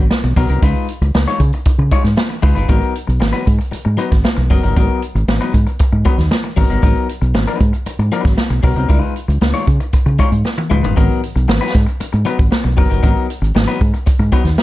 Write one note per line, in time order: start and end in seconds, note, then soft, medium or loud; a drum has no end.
0.11 muted clean electric guitar stroke soft
0.11 snare loud
0.23 0.34 B1 medium
0.23 muted clean electric guitar stroke soft
0.23 closed hi-hat soft
0.36 0.47 B1 medium
0.36 0.48 F#3 medium
0.36 0.48 B3 medium
0.36 0.48 D#4 medium
0.36 0.48 A#4 medium
0.36 kick medium
0.36 open hi-hat medium
0.49 0.60 C2 medium
0.49 0.62 F#3 medium
0.49 0.62 B3 medium
0.49 0.61 D#4 medium
0.49 0.61 A#4 medium
0.49 closed hi-hat medium
0.62 0.73 C#2 loud
0.62 0.86 G#3 medium
0.62 0.86 D#4 medium
0.62 0.87 F4 medium
0.62 0.87 B4 loud
0.62 kick medium
0.62 closed hi-hat medium
0.75 closed hi-hat soft
0.88 closed hi-hat medium
1.01 1.12 C#2 medium
1.01 muted clean electric guitar stroke medium
1.01 closed hi-hat soft
1.15 1.25 C#2 medium
1.15 muted clean electric guitar stroke soft
1.15 snare loud
1.28 1.40 G#3 medium
1.28 1.40 D#4 medium
1.28 1.40 F4 medium
1.28 1.41 C#5 medium
1.40 1.50 C#3 loud
1.40 muted clean electric guitar stroke soft
1.40 kick medium
1.40 closed hi-hat medium
1.53 muted clean electric guitar stroke soft
1.53 closed hi-hat medium
1.65 muted fingered electric bass stroke soft
1.65 muted clean electric guitar stroke soft
1.65 kick loud
1.65 closed hi-hat loud
1.78 1.89 C#3 medium
1.78 muted clean electric guitar stroke soft
1.91 2.06 G#3 medium
1.91 2.04 D#4 medium
1.91 2.04 F4 medium
1.91 2.04 C#5 loud
1.91 kick medium
1.91 closed hi-hat medium
2.04 2.15 G#2 medium
2.04 muted clean electric guitar stroke soft
2.04 snare soft
2.04 closed hi-hat medium
2.17 muted clean electric guitar stroke soft
2.17 snare loud
2.30 muted clean electric guitar stroke soft
2.30 closed hi-hat soft
2.42 2.54 C#2 medium
2.42 2.54 G#3 medium
2.42 2.55 D#4 medium
2.42 2.55 F4 medium
2.42 2.54 B4 medium
2.42 kick loud
2.42 open hi-hat medium
2.55 2.67 G1 medium
2.55 2.68 G#3 medium
2.55 2.68 D#4 medium
2.55 2.68 F4 medium
2.55 2.67 B4 medium
2.55 closed hi-hat medium
2.68 2.80 G#1 loud
2.68 2.93 F#3 medium
2.68 2.93 B3 medium
2.68 2.93 D#4 loud
2.68 2.93 A#4 loud
2.68 kick medium
2.68 closed hi-hat medium
2.81 closed hi-hat soft
2.95 closed hi-hat medium
3.07 3.19 B1 medium
3.07 muted clean electric guitar stroke soft
3.07 closed hi-hat soft
3.20 3.32 G#1 medium
3.20 muted clean electric guitar stroke soft
3.20 snare loud
3.33 3.44 F#3 medium
3.33 3.45 B3 medium
3.33 3.45 D#4 medium
3.33 3.46 B4 medium
3.33 closed hi-hat soft
3.46 3.58 G#2 loud
3.46 muted clean electric guitar stroke soft
3.46 kick medium
3.46 closed hi-hat medium
3.59 muted clean electric guitar stroke soft
3.59 closed hi-hat medium
3.71 muted clean electric guitar stroke soft
3.71 muted fingered electric bass stroke soft
3.71 closed hi-hat loud
3.85 3.96 G#2 loud
3.85 muted clean electric guitar stroke soft
3.97 4.13 F#3 medium
3.97 4.10 B3 medium
3.97 4.10 D#4 medium
3.97 4.11 B4 loud
3.97 closed hi-hat medium
4.11 4.22 G#1 medium
4.11 muted clean electric guitar stroke medium
4.11 kick medium
4.11 snare soft
4.11 closed hi-hat medium
4.24 muted clean electric guitar stroke soft
4.24 snare loud
4.37 4.48 B1 medium
4.37 muted clean electric guitar stroke soft
4.50 4.61 F#1 medium
4.50 4.62 F#3 medium
4.50 4.62 B3 medium
4.50 4.62 D#4 medium
4.50 4.62 A#4 medium
4.50 kick medium
4.50 open hi-hat medium
4.63 4.74 G1 medium
4.63 4.75 F#3 medium
4.63 4.75 B3 soft
4.63 4.75 D#4 medium
4.63 4.75 A#4 medium
4.63 closed hi-hat soft
4.76 4.87 G#1 loud
4.76 5.00 F#3 medium
4.76 5.00 B3 medium
4.76 5.00 D#4 medium
4.76 5.01 A#4 loud
4.76 kick loud
4.76 closed hi-hat medium
5.02 closed hi-hat medium
5.15 5.26 G#1 medium
5.15 muted clean electric guitar stroke soft
5.15 closed hi-hat soft
5.28 5.38 G#1 medium
5.28 muted clean electric guitar stroke soft
5.28 snare loud
5.41 5.53 F#3 medium
5.41 5.53 B3 medium
5.41 5.53 D#4 medium
5.41 5.54 B4 medium
5.41 closed hi-hat soft
5.54 5.64 G#2 loud
5.54 muted clean electric guitar stroke soft
5.54 kick medium
5.54 closed hi-hat medium
5.67 muted clean electric guitar stroke soft
5.67 closed hi-hat medium
5.79 muted clean electric guitar stroke soft
5.79 muted fingered electric bass stroke medium
5.79 kick loud
5.79 closed hi-hat loud
5.92 6.03 G#2 medium
5.92 muted clean electric guitar stroke soft
6.05 6.20 F#3 medium
6.05 6.17 B3 medium
6.05 6.17 D#4 medium
6.05 6.18 B4 medium
6.05 kick medium
6.05 closed hi-hat medium
6.18 6.29 D#2 medium
6.18 muted clean electric guitar stroke soft
6.18 snare soft
6.18 closed hi-hat medium
6.31 muted clean electric guitar stroke soft
6.31 snare loud
6.44 muted clean electric guitar stroke soft
6.44 closed hi-hat soft
6.56 6.68 G#1 medium
6.56 6.68 F#3 medium
6.56 6.69 B3 medium
6.56 6.69 D#4 medium
6.56 6.69 A#4 medium
6.56 kick medium
6.56 open hi-hat medium
6.70 6.80 G1 medium
6.70 6.81 F#3 medium
6.70 6.82 B3 medium
6.70 6.82 D#4 medium
6.70 6.82 A#4 medium
6.70 closed hi-hat soft
6.82 6.93 G#1 loud
6.82 7.07 F#3 medium
6.82 7.07 B3 medium
6.82 7.07 D#4 medium
6.82 7.07 A#4 loud
6.82 kick loud
6.82 closed hi-hat medium
6.95 closed hi-hat soft
7.09 closed hi-hat medium
7.22 7.32 B1 loud
7.22 muted clean electric guitar stroke soft
7.22 closed hi-hat soft
7.34 7.45 G#1 loud
7.34 muted clean electric guitar stroke soft
7.34 snare loud
7.47 7.59 F#3 medium
7.47 7.59 B3 medium
7.47 7.60 D#4 medium
7.47 7.60 B4 medium
7.47 closed hi-hat soft
7.60 7.71 G#2 loud
7.60 muted clean electric guitar stroke soft
7.60 kick medium
7.60 closed hi-hat medium
7.73 muted clean electric guitar stroke soft
7.73 closed hi-hat medium
7.86 muted fingered electric bass stroke soft
7.86 muted clean electric guitar stroke soft
7.86 closed hi-hat loud
7.99 8.10 G#2 medium
7.99 muted clean electric guitar stroke medium
7.99 closed hi-hat soft
8.12 8.32 F#3 medium
8.12 8.24 B3 medium
8.12 8.24 D#4 medium
8.12 8.24 B4 loud
8.12 closed hi-hat medium
8.25 8.36 G#1 loud
8.25 muted clean electric guitar stroke medium
8.25 kick loud
8.25 snare soft
8.25 closed hi-hat medium
8.37 muted clean electric guitar stroke soft
8.37 snare loud
8.50 8.61 B1 medium
8.50 muted clean electric guitar stroke medium
8.50 closed hi-hat soft
8.63 8.74 B1 medium
8.63 8.75 F#3 medium
8.63 8.75 B3 medium
8.63 8.75 D#4 medium
8.63 8.75 A#4 medium
8.63 kick medium
8.63 open hi-hat medium
8.76 8.87 C2 medium
8.76 8.88 F#3 medium
8.76 8.88 B3 medium
8.76 8.88 D#4 medium
8.76 8.88 A#4 medium
8.76 closed hi-hat soft
8.89 9.00 C#2 loud
8.89 9.13 G#3 medium
8.89 9.13 D#4 medium
8.89 9.14 F4 loud
8.89 9.14 B4 loud
8.89 kick loud
8.89 closed hi-hat medium
9.02 closed hi-hat soft
9.16 closed hi-hat medium
9.28 9.39 C#2 medium
9.28 muted clean electric guitar stroke soft
9.28 closed hi-hat soft
9.41 9.52 C#2 medium
9.41 muted clean electric guitar stroke soft
9.41 snare loud
9.54 9.65 G#3 medium
9.54 9.66 D#4 medium
9.54 9.66 F4 medium
9.54 9.67 C#5 medium
9.54 closed hi-hat soft
9.66 9.78 C#3 loud
9.66 muted clean electric guitar stroke soft
9.66 kick medium
9.66 closed hi-hat medium
9.80 muted clean electric guitar stroke medium
9.80 closed hi-hat medium
9.93 muted clean electric guitar stroke soft
9.93 muted fingered electric bass stroke soft
9.93 kick medium
9.93 closed hi-hat loud
10.06 10.17 C#3 medium
10.06 muted clean electric guitar stroke soft
10.06 closed hi-hat soft
10.19 10.34 G#3 medium
10.19 10.31 D#4 medium
10.19 10.31 F4 medium
10.19 10.31 C#5 medium
10.19 kick medium
10.19 closed hi-hat medium
10.31 10.42 G#2 medium
10.31 muted clean electric guitar stroke soft
10.31 closed hi-hat medium
10.45 muted clean electric guitar stroke soft
10.45 snare medium
10.58 muted clean electric guitar stroke soft
10.58 high tom medium
10.70 10.81 C#2 medium
10.70 10.82 G#3 medium
10.70 10.82 D#4 medium
10.70 10.82 F4 medium
10.70 10.82 B4 medium
10.70 mid tom medium
10.83 10.94 G1 medium
10.83 10.95 G#3 soft
10.83 10.95 D#4 soft
10.83 10.95 F4 medium
10.83 10.95 B4 medium
10.83 floor tom medium
10.96 11.07 G#1 loud
10.96 11.20 F#3 medium
10.96 11.20 B3 medium
10.96 11.20 D#4 loud
10.96 11.21 A#4 loud
10.96 kick loud
10.96 closed hi-hat medium
11.10 closed hi-hat soft
11.24 closed hi-hat medium
11.36 11.46 B1 medium
11.36 muted clean electric guitar stroke soft
11.36 closed hi-hat soft
11.48 11.59 G#1 loud
11.48 muted clean electric guitar stroke medium
11.48 snare loud
11.61 11.73 F#3 medium
11.61 11.73 B3 medium
11.61 11.74 D#4 medium
11.61 11.75 B4 medium
11.74 11.85 G#2 loud
11.74 muted clean electric guitar stroke soft
11.74 kick loud
11.74 closed hi-hat medium
11.87 muted clean electric guitar stroke medium
11.87 closed hi-hat medium
12.00 muted clean electric guitar stroke soft
12.00 muted fingered electric bass stroke medium
12.00 closed hi-hat loud
12.13 12.24 G#2 medium
12.13 muted clean electric guitar stroke medium
12.13 closed hi-hat soft
12.25 12.40 F#3 medium
12.25 12.38 B3 medium
12.25 12.37 D#4 medium
12.25 12.38 B4 loud
12.25 closed hi-hat medium
12.39 12.49 G#1 loud
12.39 muted clean electric guitar stroke soft
12.39 kick loud
12.39 closed hi-hat medium
12.51 muted clean electric guitar stroke soft
12.51 snare loud
12.64 12.75 B1 medium
12.64 muted clean electric guitar stroke medium
12.77 12.88 F#1 medium
12.77 12.88 F#3 medium
12.77 12.89 B3 medium
12.77 12.89 D#4 medium
12.77 12.89 A#4 medium
12.77 kick loud
12.77 open hi-hat medium
12.90 13.01 G1 medium
12.90 13.01 F#3 medium
12.90 13.01 B3 medium
12.90 13.02 D#4 medium
12.90 13.01 A#4 medium
12.90 closed hi-hat medium
13.02 13.14 G#1 loud
13.02 13.27 F#3 medium
13.02 13.27 B3 medium
13.02 13.27 D#4 loud
13.02 13.27 A#4 loud
13.02 kick loud
13.02 closed hi-hat medium
13.17 closed hi-hat soft
13.30 closed hi-hat medium
13.41 13.52 G#1 medium
13.41 muted clean electric guitar stroke soft
13.41 closed hi-hat soft
13.55 13.65 G#1 medium
13.55 muted clean electric guitar stroke soft
13.55 snare loud
13.68 13.80 F#3 medium
13.68 13.80 B3 medium
13.68 13.80 D#4 medium
13.68 13.81 B4 medium
13.68 closed hi-hat soft
13.81 13.91 G#2 loud
13.81 muted clean electric guitar stroke soft
13.81 kick loud
13.81 closed hi-hat medium
13.94 muted clean electric guitar stroke medium
13.94 closed hi-hat medium
14.06 muted clean electric guitar stroke soft
14.06 muted fingered electric bass stroke soft
14.06 kick loud
14.06 closed hi-hat loud
14.19 14.30 G#2 loud
14.19 muted clean electric guitar stroke medium
14.19 closed hi-hat soft
14.32 14.47 F#3 medium
14.32 14.44 B3 medium
14.32 14.44 D#4 medium
14.32 14.44 B4 loud
14.32 kick medium
14.32 closed hi-hat medium
14.44 14.55 D#2 loud
14.44 muted clean electric guitar stroke soft
14.44 snare soft
14.44 closed hi-hat medium
14.58 muted clean electric guitar stroke soft
14.58 snare loud